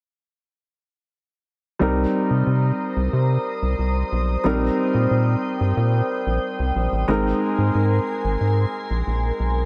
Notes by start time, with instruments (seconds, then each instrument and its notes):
1.79 analog synth bass C2, grand piano G3 C4 D#4 A#4, ambient pad C5 A#5 D#6
2.31 analog synth bass C3
2.47 analog synth bass C3
2.97 analog synth bass C2
3.13 analog synth bass C3
3.62 analog synth bass C2
3.79 analog synth bass C2
4.12 analog synth bass B1
4.44 analog synth bass A#1, grand piano G3 C4 D#4 A#4, ambient pad G5
4.94 analog synth bass A#2
5.11 analog synth bass A#2
5.61 analog synth bass G2
5.77 analog synth bass A#2
6.27 analog synth bass A#1
6.59 analog synth bass C2
6.76 analog synth bass A#1
6.92 analog synth bass A1
7.08 analog synth bass G#1, grand piano G#3 C4 D#4 A#4, ambient pad A#4 G#5 C6
7.58 analog synth bass G#2
7.75 analog synth bass G#2
8.24 analog synth bass G#1
8.41 analog synth bass G#2
8.90 analog synth bass A#1
9.07 analog synth bass A#1
9.40 analog synth bass B1